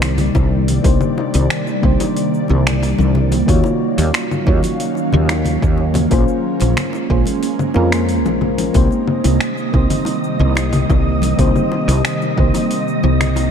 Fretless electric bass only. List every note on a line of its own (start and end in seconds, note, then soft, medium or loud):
0.00 0.29 C2 medium
0.35 0.78 C2 medium
0.85 0.97 C2 medium
1.35 1.46 C2 loud
1.84 1.96 C2 medium
2.50 2.93 C2 medium
2.99 3.42 C2 medium
3.48 3.61 D#2 medium
3.98 4.10 D#2 loud
4.47 4.60 D#2 medium
5.13 5.56 D#2 loud
5.63 6.05 D#2 medium
6.12 6.24 A#1 medium
6.61 6.73 A#1 loud
7.10 7.23 A#1 medium
7.76 8.26 F2 medium
8.26 8.69 A#1 medium
8.75 8.88 C2 medium
9.25 9.37 C2 loud
9.74 9.87 C2 medium
10.40 10.83 C2 loud
10.90 11.33 C2 medium
11.39 11.51 C2 medium
11.88 12.00 C2 loud
12.38 12.51 C2 medium
13.04 13.47 C2 medium